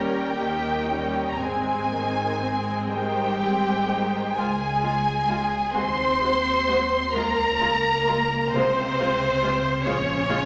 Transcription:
0.00 1.39 D#2 soft
0.00 0.35 G3 soft
0.00 0.35 C#4 soft
0.00 0.35 G4 soft
0.00 0.35 A#4 soft
0.00 0.38 A#4 soft
0.00 1.31 G5 medium
0.37 0.89 D#3 soft
0.37 0.89 A#3 soft
0.37 0.89 D#4 soft
0.37 0.88 G4 soft
0.37 0.87 G4 soft
0.88 1.41 G3 soft
0.88 1.40 C#4 soft
0.88 1.40 D#4 soft
0.88 1.40 G4 soft
0.88 1.40 A#4 soft
1.31 1.40 A#5 soft
1.39 4.16 G#1 soft
1.39 1.89 G#3 soft
1.39 2.87 C4 soft
1.39 1.88 C4 soft
1.39 1.89 C4 soft
1.39 1.88 G#4 soft
1.39 2.89 G#5 medium
1.91 2.41 D#3 soft
1.91 2.40 G#3 soft
1.91 2.41 D#4 soft
1.91 2.41 C5 soft
2.41 2.88 G#3 soft
2.41 2.90 C4 soft
2.41 2.90 G#4 soft
2.89 3.39 D#3 soft
2.89 4.33 G3 soft
2.89 3.39 G#3 soft
2.89 3.39 D#4 soft
2.89 4.34 G4 medium
2.89 3.39 C5 soft
2.89 4.33 G5 medium
3.39 3.86 G#3 soft
3.39 3.86 C4 soft
3.39 3.86 G#4 soft
3.88 4.37 D#3 soft
3.88 4.37 G#3 soft
3.88 4.37 D#4 soft
3.88 4.38 C5 soft
4.35 5.59 C#2 medium
4.35 5.76 G#3 soft
4.35 4.46 G#3 soft
4.35 4.45 F4 soft
4.35 5.72 G#4 medium
4.35 5.75 G#5 medium
4.82 4.91 G#3 soft
4.82 4.90 F4 soft
5.28 5.36 G#3 soft
5.28 5.36 F4 soft
5.74 6.99 D#2 medium
5.74 5.83 G#3 soft
5.74 7.12 C4 medium
5.74 5.82 F#4 medium
5.74 7.15 C5 medium
5.74 7.15 C6 medium
6.21 6.29 G#3 soft
6.21 6.29 F#4 soft
6.68 6.76 G#3 soft
6.68 6.76 F#4 soft
7.13 8.37 C#2 medium
7.13 7.22 G#3 medium
7.13 8.50 A#3 medium
7.13 7.22 F4 soft
7.13 8.50 A#4 medium
7.13 8.52 A#5 medium
7.60 7.68 G#3 soft
7.60 7.68 F4 medium
8.07 8.15 G#3 medium
8.07 8.16 F4 medium
8.52 9.69 C#2 medium
8.52 9.82 C3 medium
8.52 8.63 G#3 medium
8.52 9.84 C4 medium
8.52 8.62 F4 medium
8.52 9.82 C5 medium
8.99 9.07 G#3 soft
8.99 9.07 F4 soft
9.42 9.50 G#3 medium
9.42 9.50 F4 medium
9.83 10.45 A#1 medium
9.83 10.45 C#3 medium
9.83 9.93 G#3 medium
9.83 10.45 C#4 medium
9.83 9.94 F4 medium
9.83 10.45 C#5 medium
10.29 10.37 G#3 medium
10.29 10.37 F4 medium

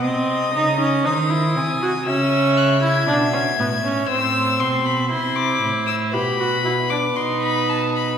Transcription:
0.03 0.56 C3 medium
0.03 0.53 C4 medium
0.03 1.03 D#5 medium
0.03 1.03 D#6 medium
0.54 1.05 C#3 medium
0.54 0.78 D#4 medium
0.79 1.07 C#4 medium
1.05 1.57 D#3 medium
1.05 1.31 D#4 medium
1.05 1.58 C5 medium
1.05 2.04 D#6 medium
1.30 1.81 E4 medium
1.55 2.07 C3 medium
1.55 2.09 G#5 medium
1.82 1.90 F#4 medium
2.06 3.07 C#3 medium
2.06 2.81 C#4 medium
2.06 4.10 E5 medium
2.06 2.59 E6 medium
2.57 2.83 F#6 medium
2.83 3.07 E4 medium
2.83 4.07 G#6 medium
3.08 3.60 B2 medium
3.08 3.16 D4 medium
3.33 3.41 C#4 medium
3.59 4.08 A2 medium
3.59 3.67 B3 medium
3.84 4.09 C#4 medium
4.09 4.61 A2 medium
4.09 5.10 C4 medium
4.09 6.10 C5 medium
4.09 4.62 E6 loud
4.60 5.13 B2 medium
4.60 4.87 C6 medium
4.86 5.09 B5 medium
5.10 5.62 C3 medium
5.10 6.15 E4 medium
5.10 5.37 C6 medium
5.36 5.86 D6 medium
5.62 6.15 A2 medium
5.87 5.95 E6 medium
6.12 7.16 B2 medium
6.12 6.41 G4 medium
6.12 8.18 B4 medium
6.12 6.91 B5 medium
6.40 6.64 F#4 medium
6.65 6.73 E4 medium
6.90 6.99 D4 medium
6.90 7.18 D6 medium
7.16 8.18 B2 medium
7.16 8.18 D#4 medium
7.16 7.42 C6 medium
7.42 7.71 B5 medium
7.69 7.95 A5 medium
7.95 8.18 B5 medium

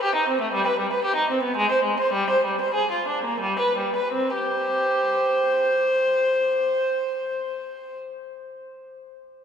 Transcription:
0.03 0.14 G4 medium
0.15 0.27 D#4 medium
0.29 0.40 C4 medium
0.41 0.52 A3 medium
0.54 0.65 G3 medium
0.67 0.78 B4 medium
0.80 0.91 G3 medium
0.93 1.04 B4 medium
1.05 1.17 G4 medium
1.16 1.29 D#4 medium
1.30 1.43 C4 medium
1.43 1.56 B3 medium
1.57 1.70 G#3 medium
1.71 1.85 C5 medium
1.85 1.99 G#3 medium
2.00 2.14 C5 medium
2.13 2.29 G3 medium
2.30 2.45 C5 medium
2.46 2.60 G3 medium
2.61 2.76 C5 medium
2.74 2.90 G#4 medium
2.91 3.07 F4 medium
3.08 3.24 D4 medium
3.24 3.41 A#3 medium
3.41 3.58 G3 medium
3.59 3.76 B4 medium
3.78 3.95 G3 soft
3.96 4.13 B4 medium
4.13 4.35 C4 medium
4.36 5.74 G4 soft
4.36 7.97 C5 medium

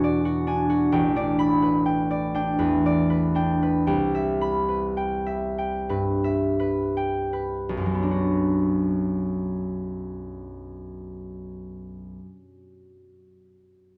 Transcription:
0.00 0.97 E2 medium
0.00 0.96 B2 medium
0.00 0.46 D4 medium
0.00 0.24 F#4 medium
0.00 1.15 D5 medium
0.00 0.96 F#5 medium
0.00 0.46 G#5 medium
0.25 0.68 F#4 medium
0.47 1.15 D4 medium
0.47 0.97 G#5 medium
0.70 0.97 F#4 medium
0.92 3.91 A1 medium
0.92 1.84 G5 medium
1.16 2.33 D4 medium
1.16 2.09 D5 medium
1.39 4.40 B5 medium
1.62 2.58 B4 medium
1.86 2.34 G5 medium
2.11 2.85 D5 medium
2.34 3.34 D4 medium
2.34 3.34 G5 medium
2.59 3.92 E2 medium
2.59 3.09 B4 medium
2.86 3.93 D5 medium
3.10 3.61 B4 medium
3.35 3.92 D4 medium
3.35 3.86 G5 medium
3.63 4.67 B4 medium
3.87 7.73 C2 medium
3.87 4.96 G5 medium
4.15 5.25 E5 medium
4.41 8.31 B5 medium
4.69 5.89 B4 medium
4.97 5.57 G5 medium
5.26 6.23 E5 medium
5.58 6.96 G5 medium
5.89 7.74 G2 medium
5.89 6.58 B4 medium
6.24 7.75 E5 medium
6.60 7.32 B4 medium
6.97 7.75 G5 medium
7.33 11.23 B4 medium
7.69 12.16 B1 medium
7.77 12.25 F#2 soft
7.86 12.33 F#3 medium
7.94 12.42 B3 soft
8.02 12.50 D4 soft
8.11 12.58 F#4 soft

